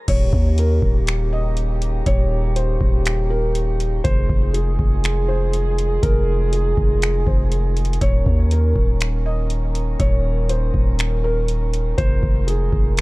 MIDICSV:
0, 0, Header, 1, 5, 480
1, 0, Start_track
1, 0, Tempo, 495868
1, 78, Time_signature, 4, 2, 24, 8
1, 12597, End_track
2, 0, Start_track
2, 0, Title_t, "Felt piano"
2, 0, Program_c, 0, 0
2, 78, Note_on_c, 0, 73, 105
2, 529, Note_off_c, 0, 73, 0
2, 571, Note_on_c, 0, 70, 90
2, 1246, Note_off_c, 0, 70, 0
2, 1283, Note_on_c, 0, 75, 92
2, 1509, Note_off_c, 0, 75, 0
2, 1996, Note_on_c, 0, 73, 111
2, 2448, Note_off_c, 0, 73, 0
2, 2479, Note_on_c, 0, 72, 83
2, 3160, Note_off_c, 0, 72, 0
2, 3196, Note_on_c, 0, 70, 88
2, 3425, Note_off_c, 0, 70, 0
2, 3912, Note_on_c, 0, 72, 107
2, 4366, Note_off_c, 0, 72, 0
2, 4393, Note_on_c, 0, 68, 90
2, 5077, Note_off_c, 0, 68, 0
2, 5116, Note_on_c, 0, 72, 83
2, 5345, Note_off_c, 0, 72, 0
2, 5834, Note_on_c, 0, 70, 105
2, 6287, Note_off_c, 0, 70, 0
2, 6315, Note_on_c, 0, 68, 88
2, 6998, Note_off_c, 0, 68, 0
2, 7039, Note_on_c, 0, 72, 68
2, 7267, Note_off_c, 0, 72, 0
2, 7756, Note_on_c, 0, 73, 104
2, 8208, Note_off_c, 0, 73, 0
2, 8250, Note_on_c, 0, 70, 86
2, 8925, Note_off_c, 0, 70, 0
2, 8961, Note_on_c, 0, 75, 87
2, 9188, Note_off_c, 0, 75, 0
2, 9675, Note_on_c, 0, 73, 106
2, 10128, Note_off_c, 0, 73, 0
2, 10160, Note_on_c, 0, 72, 84
2, 10840, Note_off_c, 0, 72, 0
2, 10880, Note_on_c, 0, 70, 90
2, 11107, Note_off_c, 0, 70, 0
2, 11594, Note_on_c, 0, 72, 109
2, 12047, Note_off_c, 0, 72, 0
2, 12074, Note_on_c, 0, 68, 90
2, 12597, Note_off_c, 0, 68, 0
2, 12597, End_track
3, 0, Start_track
3, 0, Title_t, "French horn section"
3, 0, Program_c, 1, 60
3, 78, Note_on_c, 1, 58, 75
3, 78, Note_on_c, 1, 67, 90
3, 79, Note_on_c, 1, 49, 85
3, 79, Note_on_c, 1, 63, 76
3, 3879, Note_off_c, 1, 67, 0
3, 3880, Note_off_c, 1, 49, 0
3, 3880, Note_off_c, 1, 58, 0
3, 3880, Note_off_c, 1, 63, 0
3, 3914, Note_on_c, 1, 68, 93
3, 3915, Note_on_c, 1, 56, 74
3, 3915, Note_on_c, 1, 65, 75
3, 3916, Note_on_c, 1, 51, 84
3, 7718, Note_off_c, 1, 56, 0
3, 7718, Note_off_c, 1, 65, 0
3, 7718, Note_off_c, 1, 68, 0
3, 7758, Note_on_c, 1, 58, 77
3, 7758, Note_on_c, 1, 70, 92
3, 7759, Note_on_c, 1, 61, 76
3, 11560, Note_off_c, 1, 58, 0
3, 11560, Note_off_c, 1, 61, 0
3, 11599, Note_on_c, 1, 56, 75
3, 11599, Note_on_c, 1, 65, 78
3, 12597, Note_off_c, 1, 51, 0
3, 12597, Note_off_c, 1, 56, 0
3, 12597, Note_off_c, 1, 65, 0
3, 12597, Note_off_c, 1, 70, 0
3, 12597, End_track
4, 0, Start_track
4, 0, Title_t, "808-style bass"
4, 0, Program_c, 2, 38
4, 78, Note_on_c, 2, 27, 111
4, 309, Note_off_c, 2, 27, 0
4, 318, Note_on_c, 2, 39, 112
4, 779, Note_off_c, 2, 39, 0
4, 797, Note_on_c, 2, 27, 104
4, 1959, Note_off_c, 2, 27, 0
4, 1998, Note_on_c, 2, 27, 115
4, 2689, Note_off_c, 2, 27, 0
4, 2717, Note_on_c, 2, 27, 101
4, 3879, Note_off_c, 2, 27, 0
4, 3917, Note_on_c, 2, 29, 109
4, 4148, Note_off_c, 2, 29, 0
4, 4157, Note_on_c, 2, 29, 109
4, 4619, Note_off_c, 2, 29, 0
4, 4637, Note_on_c, 2, 29, 103
4, 5799, Note_off_c, 2, 29, 0
4, 5837, Note_on_c, 2, 29, 115
4, 6529, Note_off_c, 2, 29, 0
4, 6557, Note_on_c, 2, 29, 104
4, 7018, Note_off_c, 2, 29, 0
4, 7035, Note_on_c, 2, 29, 107
4, 7728, Note_off_c, 2, 29, 0
4, 7758, Note_on_c, 2, 27, 109
4, 7988, Note_off_c, 2, 27, 0
4, 7998, Note_on_c, 2, 39, 107
4, 8459, Note_off_c, 2, 39, 0
4, 8477, Note_on_c, 2, 27, 96
4, 9639, Note_off_c, 2, 27, 0
4, 9677, Note_on_c, 2, 27, 114
4, 10369, Note_off_c, 2, 27, 0
4, 10397, Note_on_c, 2, 27, 106
4, 11559, Note_off_c, 2, 27, 0
4, 11598, Note_on_c, 2, 29, 111
4, 11828, Note_off_c, 2, 29, 0
4, 11838, Note_on_c, 2, 29, 113
4, 12299, Note_off_c, 2, 29, 0
4, 12318, Note_on_c, 2, 29, 100
4, 12597, Note_off_c, 2, 29, 0
4, 12597, End_track
5, 0, Start_track
5, 0, Title_t, "Drums"
5, 78, Note_on_c, 9, 36, 116
5, 78, Note_on_c, 9, 42, 76
5, 78, Note_on_c, 9, 49, 91
5, 175, Note_off_c, 9, 36, 0
5, 175, Note_off_c, 9, 42, 0
5, 175, Note_off_c, 9, 49, 0
5, 318, Note_on_c, 9, 36, 88
5, 415, Note_off_c, 9, 36, 0
5, 560, Note_on_c, 9, 42, 77
5, 657, Note_off_c, 9, 42, 0
5, 798, Note_on_c, 9, 36, 90
5, 895, Note_off_c, 9, 36, 0
5, 1038, Note_on_c, 9, 42, 76
5, 1050, Note_on_c, 9, 26, 114
5, 1135, Note_off_c, 9, 42, 0
5, 1146, Note_off_c, 9, 26, 0
5, 1517, Note_on_c, 9, 42, 67
5, 1614, Note_off_c, 9, 42, 0
5, 1759, Note_on_c, 9, 42, 61
5, 1856, Note_off_c, 9, 42, 0
5, 1997, Note_on_c, 9, 36, 113
5, 1997, Note_on_c, 9, 42, 76
5, 2094, Note_off_c, 9, 36, 0
5, 2094, Note_off_c, 9, 42, 0
5, 2479, Note_on_c, 9, 42, 76
5, 2576, Note_off_c, 9, 42, 0
5, 2717, Note_on_c, 9, 36, 93
5, 2814, Note_off_c, 9, 36, 0
5, 2958, Note_on_c, 9, 42, 76
5, 2969, Note_on_c, 9, 26, 118
5, 3055, Note_off_c, 9, 42, 0
5, 3066, Note_off_c, 9, 26, 0
5, 3437, Note_on_c, 9, 42, 73
5, 3534, Note_off_c, 9, 42, 0
5, 3680, Note_on_c, 9, 42, 62
5, 3777, Note_off_c, 9, 42, 0
5, 3918, Note_on_c, 9, 36, 116
5, 3918, Note_on_c, 9, 42, 76
5, 4014, Note_off_c, 9, 36, 0
5, 4015, Note_off_c, 9, 42, 0
5, 4158, Note_on_c, 9, 36, 93
5, 4255, Note_off_c, 9, 36, 0
5, 4399, Note_on_c, 9, 42, 76
5, 4496, Note_off_c, 9, 42, 0
5, 4637, Note_on_c, 9, 36, 90
5, 4734, Note_off_c, 9, 36, 0
5, 4878, Note_on_c, 9, 42, 79
5, 4889, Note_on_c, 9, 26, 113
5, 4975, Note_off_c, 9, 42, 0
5, 4986, Note_off_c, 9, 26, 0
5, 5357, Note_on_c, 9, 42, 70
5, 5454, Note_off_c, 9, 42, 0
5, 5600, Note_on_c, 9, 42, 62
5, 5697, Note_off_c, 9, 42, 0
5, 5837, Note_on_c, 9, 36, 112
5, 5837, Note_on_c, 9, 42, 76
5, 5934, Note_off_c, 9, 36, 0
5, 5934, Note_off_c, 9, 42, 0
5, 6319, Note_on_c, 9, 42, 78
5, 6415, Note_off_c, 9, 42, 0
5, 6557, Note_on_c, 9, 36, 89
5, 6654, Note_off_c, 9, 36, 0
5, 6797, Note_on_c, 9, 42, 75
5, 6809, Note_on_c, 9, 26, 116
5, 6894, Note_off_c, 9, 42, 0
5, 6906, Note_off_c, 9, 26, 0
5, 7035, Note_on_c, 9, 36, 101
5, 7132, Note_off_c, 9, 36, 0
5, 7276, Note_on_c, 9, 42, 71
5, 7373, Note_off_c, 9, 42, 0
5, 7518, Note_on_c, 9, 42, 51
5, 7598, Note_off_c, 9, 42, 0
5, 7598, Note_on_c, 9, 42, 52
5, 7678, Note_off_c, 9, 42, 0
5, 7678, Note_on_c, 9, 42, 49
5, 7758, Note_off_c, 9, 42, 0
5, 7758, Note_on_c, 9, 36, 113
5, 7758, Note_on_c, 9, 42, 77
5, 7854, Note_off_c, 9, 36, 0
5, 7854, Note_off_c, 9, 42, 0
5, 7997, Note_on_c, 9, 36, 90
5, 8094, Note_off_c, 9, 36, 0
5, 8239, Note_on_c, 9, 42, 75
5, 8336, Note_off_c, 9, 42, 0
5, 8477, Note_on_c, 9, 36, 92
5, 8574, Note_off_c, 9, 36, 0
5, 8718, Note_on_c, 9, 42, 78
5, 8729, Note_on_c, 9, 26, 116
5, 8815, Note_off_c, 9, 42, 0
5, 8826, Note_off_c, 9, 26, 0
5, 9196, Note_on_c, 9, 42, 68
5, 9293, Note_off_c, 9, 42, 0
5, 9439, Note_on_c, 9, 42, 61
5, 9536, Note_off_c, 9, 42, 0
5, 9677, Note_on_c, 9, 36, 112
5, 9677, Note_on_c, 9, 42, 74
5, 9774, Note_off_c, 9, 36, 0
5, 9774, Note_off_c, 9, 42, 0
5, 10159, Note_on_c, 9, 42, 76
5, 10255, Note_off_c, 9, 42, 0
5, 10397, Note_on_c, 9, 36, 86
5, 10494, Note_off_c, 9, 36, 0
5, 10637, Note_on_c, 9, 42, 77
5, 10648, Note_on_c, 9, 26, 115
5, 10734, Note_off_c, 9, 42, 0
5, 10745, Note_off_c, 9, 26, 0
5, 11117, Note_on_c, 9, 42, 68
5, 11213, Note_off_c, 9, 42, 0
5, 11360, Note_on_c, 9, 42, 63
5, 11456, Note_off_c, 9, 42, 0
5, 11598, Note_on_c, 9, 36, 116
5, 11598, Note_on_c, 9, 42, 76
5, 11695, Note_off_c, 9, 36, 0
5, 11695, Note_off_c, 9, 42, 0
5, 11838, Note_on_c, 9, 36, 92
5, 11935, Note_off_c, 9, 36, 0
5, 12080, Note_on_c, 9, 42, 75
5, 12177, Note_off_c, 9, 42, 0
5, 12318, Note_on_c, 9, 36, 91
5, 12415, Note_off_c, 9, 36, 0
5, 12559, Note_on_c, 9, 42, 80
5, 12597, Note_off_c, 9, 42, 0
5, 12597, End_track
0, 0, End_of_file